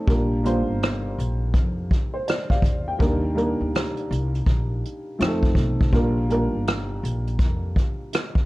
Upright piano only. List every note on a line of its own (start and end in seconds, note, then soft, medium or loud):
0.07 0.38 G3 medium
0.07 0.39 A#3 medium
0.07 0.39 D4 medium
0.07 0.39 F4 medium
0.07 0.40 A#4 medium
0.43 1.61 G3 medium
0.43 1.61 A#3 medium
0.43 1.61 D4 medium
0.43 1.62 F4 medium
0.43 1.62 C5 medium
2.14 2.27 C5 medium
2.28 2.49 D5 medium
2.50 2.85 F5 medium
2.88 3.22 G5 medium
2.99 3.30 G3 medium
2.99 3.31 A#3 medium
2.99 3.31 D4 medium
2.99 3.31 D#4 medium
2.99 3.32 A#4 medium
3.34 4.53 G3 medium
3.34 4.53 A#3 medium
3.34 4.53 D4 medium
3.34 4.54 D#4 medium
3.34 4.54 A#4 medium
5.19 5.81 F3 medium
5.19 5.82 A3 medium
5.19 5.82 C4 medium
5.19 5.83 D#4 medium
5.19 5.29 G4 medium
5.28 5.86 A4 medium
5.92 6.23 G3 medium
5.92 6.24 A#3 medium
5.92 6.24 D4 medium
5.92 6.25 F4 medium
5.92 6.25 A#4 medium
6.29 7.46 G3 medium
6.29 7.47 A#3 medium
6.29 7.47 D4 medium
6.29 7.47 F4 medium
6.29 7.48 A#4 medium